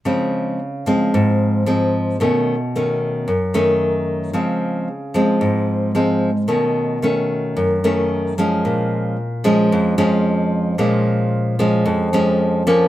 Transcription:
\new Staff \with { instrumentName = "Nylon-string guitar" } { \clef bass \time 4/4 \key bes \minor \tempo 4 = 112 << { <f aes c'>4 r8 <f aes c'>4. <f aes c'>4 | <ees a des'>8 r8 <ees a des'>4 r8 <ees a des'>4. | <f aes c'>4 r8 <f aes c'>4. <f aes c'>8 r8 | <ees a des'>4 <ees a des'>4. <ees a des'>4 <f aes des'>8~ |
<f aes des'>4 r8 <f aes des'>4 <f aes des'>4. | <f aes des'>4. <f aes des'>4 <f aes des'>4 <f bes des'>8 | } \\ { des2 aes,2 | ces2 ges,2 | des2 aes,2 | ces2 ges,2 |
bes,2 f,2 | bes,2 f,2 | } >> }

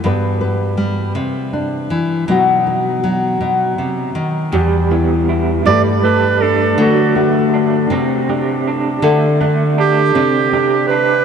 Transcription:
<<
  \new Staff \with { instrumentName = "Clarinet" } { \time 6/8 \key e \minor \tempo 4. = 53 r2. | r2. | r4. d''8 b'8 a'8 | fis'8 r2 r8 |
r4 g'4. b'8 | }
  \new Staff \with { instrumentName = "Clean electric guitar" } { \time 6/8 \key e \minor r2. | r2. | g8 b8 e'8 g8 a'8 d'8 | fis8 a8 d'8 c'8 g'8 d'8 |
a8 a8 d'8 c'8 g'8 d'8 | }
  \new Staff \with { instrumentName = "Nylon-string guitar" } { \time 6/8 \key e \minor << { <g b b'>8 b'4 r8 d'4 | <fis b dis' fis'>8 dis'2~ dis'8 | g'8 e'4 <g a b'>8 a4 | a8 fis'4 g'8 d'4 |
a'8 d'4 d'8 d'4 | } \\ { g,4 g8 c4 e8 | b,4 fis8 b,8 c8 dis8 | e,4. g,4. | d4. c4. |
d4. c4. | } >> }
>>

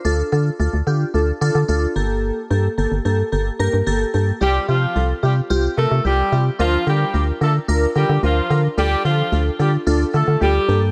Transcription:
<<
  \new Staff \with { instrumentName = "Synth keys" } { \time 4/4 \key d \minor \tempo 4 = 110 <d' f' a'>8 <d' f' a'>8 <d' f' a'>8 <d' f' g'>8 <d' f' a'>8 <d' f' a'>8 <d' f' a'>8 <bes g' a'>8~ | <bes g' a'>8 <bes g' a'>8 <bes g' a'>8 <bes g' a'>8 <bes g' a'>8 <bes g' bes'>8 <bes g' a'>8 <bes g' a'>8 | <c' f' g'>8 <c' f' g'>8 <c' f' a'>8 <c' f' g'>8 <c' f' g'>8 <c' f' bes'>8 <c' f' g'>8 <c' f' g'>8 | <d' f' bes'>8 <d' f' bes'>8 <d' f' bes'>8 <d' f' bes'>8 <d' f' bes'>8 <d' f' bes'>8 <d' f' bes'>8 <d' f' bes'>8 |
<d' f' a'>8 <d' f' a'>8 <d' f' a'>8 <d' f' a'>8 <d' f' a'>8 <d' f' a'>8 <d' f' a'>8 <bes g' a'>8 | }
  \new Staff \with { instrumentName = "Horn section" } { \time 4/4 \key d \minor r1 | r1 | <g g'>8 <f f'>8. r16 <g g'>16 r8. <a a'>8 <g g'>8. r16 | <f f'>8 <g g'>8. r16 <a a'>16 r8. <g g'>8 <f f'>8. r16 |
<g g'>8 <f f'>8. r16 <g g'>16 r8. <a a'>8 <g g'>8. r16 | }
  \new Staff \with { instrumentName = "FM bass" } { \clef bass \time 4/4 \key d \minor d,8 d8 d,16 d,16 d8 d,8 d16 d16 d,8 g,,8~ | g,,8 g,8 g,,16 g,,16 g,8 g,,8 g,16 g,16 g,,8 g,8 | c,8 c8 c,8 c8 c,8 c16 c16 c,8 c8 | d,8 d8 d,8 d8 d,8 d16 d16 d,8 d8 |
d,8 d8 d,8 d8 d,8 d16 d16 d,8 g,8 | }
>>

